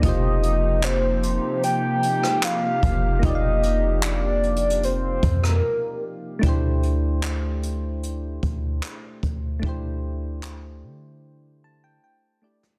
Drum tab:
HH |x-----x-----------x-----x-----x-----------x-----|x-----x-----x-----x-x-x-x-----x-----------------|x-----x-----x-----x-----x-----x-----x-----x-----|------------------------------------------------|
CP |------------x-----------------------x-----------|------------x-----------------------------------|------------x-----------------------x-----------|------------x-----------------------------------|
SD |---------------------------------r--------------|---------------------------------r--------------|------------------------------------------------|---------------------------------------------o--|
BD |o-----------------------------------------o-----|o-----------------------------o-----------------|o-----------------------------o-----------o-----|o-----------------------------------------------|